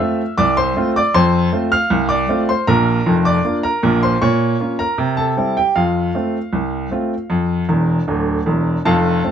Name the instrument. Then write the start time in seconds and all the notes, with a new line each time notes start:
grand piano
Already playing: E5 E6
0.00 A3 C4 F4
0.38 C2 D5 D6
0.57 C5 C6
0.77 A3 C4 F4
0.96 D5 D6
1.14 F2 C5 C6
1.53 A3 C4 F4
1.72 F5 F6
1.90 C2
2.09 D5 D6
2.29 A3 C4 F4
2.49 C5 C6
2.67 A#1 A#2 A#4 A#5
3.06 F1 F2
3.25 D5 D6
3.45 A#3 D4 F4
3.63 A#4 A#5
3.83 A#1 A#2
4.03 C5 C6
4.22 A#2 C#5 C#6
4.60 A#3 C#4 F4
4.79 A#4 A#5
4.98 C3
5.17 A4 A5
5.37 G3 C4 E4
5.57 G4 G5
5.76 F2 F4 F5
6.15 A3 C4 F4
6.53 C2
6.91 A3 C4 F4
7.30 F2
7.69 E1 E2
8.08 D1 D2
8.46 E1 E2
8.85 F1 F2 A4 F5 A5
9.24 A3 C4 F4